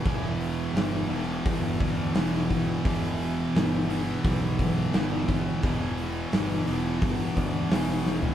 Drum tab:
HH |o-o-o-o-o-o-o-o-|o-o-o-o-o-o-o-o-|o-o-o-o-o-o-o---|
SD |----o-------o---|----o-------o---|----o-------o-o-|
FT |----------------|----------------|---------------o|
BD |o-------o-o---o-|o-------o-o---o-|o-------o-o-----|